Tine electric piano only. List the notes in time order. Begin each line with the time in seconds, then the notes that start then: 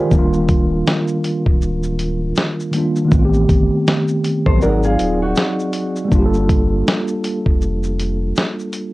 Already playing: F4 G4 G#4 A#4 C5 D5
0.05 D#3 F3
0.11 G3 A#3 D4
0.19 F4
2.71 D#3 G3 A#3
2.77 D4 F4
3.05 D#3 A3
3.12 B3 C4
3.19 F4
3.25 G4
4.55 F#3 C4
4.62 D#4 D5
4.69 G#4
6.05 G3 A#3
6.12 D4 F4
6.19 G4
6.26 A4